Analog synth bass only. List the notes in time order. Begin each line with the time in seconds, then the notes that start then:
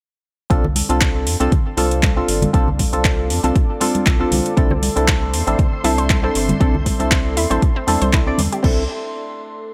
0.50 C2
0.90 C2
1.27 F2
1.40 C2
1.77 C2
2.28 G1
2.54 C2
2.93 C2
3.30 F2
3.44 C2
4.06 C2
4.32 C2
4.57 C2
4.97 C2
5.34 E2
5.47 A1
5.84 C2
6.35 G1
6.61 C2
7.00 C2
7.37 E2
7.51 A1
7.88 E2
8.02 C2
8.39 E2
8.64 C2